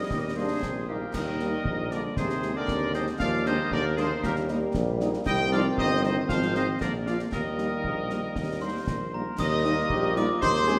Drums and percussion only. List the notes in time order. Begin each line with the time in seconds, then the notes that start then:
0.11 concert bass drum, snare
0.63 concert bass drum, snare
1.14 concert bass drum, snare, crash
1.40 snare
1.65 concert bass drum
1.91 snare
2.17 concert bass drum, snare
2.30 snare
2.43 snare
2.68 concert bass drum, snare
2.94 snare
3.07 snare
3.20 concert bass drum, snare
3.46 snare
3.71 concert bass drum
3.97 snare
4.23 concert bass drum, snare
4.36 snare
4.49 snare
4.74 concert bass drum, snare
5.00 snare
5.13 snare
5.26 concert bass drum, snare, crash
5.52 snare
5.78 concert bass drum
6.04 snare
6.29 concert bass drum, snare
6.42 snare
6.55 snare
6.81 concert bass drum, snare
7.07 snare
7.19 snare
7.32 concert bass drum, snare
7.58 snare
7.84 concert bass drum
8.10 snare
8.36 concert bass drum, snare
8.87 concert bass drum, snare
9.39 concert bass drum, snare, crash
9.65 snare
9.90 concert bass drum
10.16 snare
10.42 concert bass drum, snare
10.55 snare
10.68 snare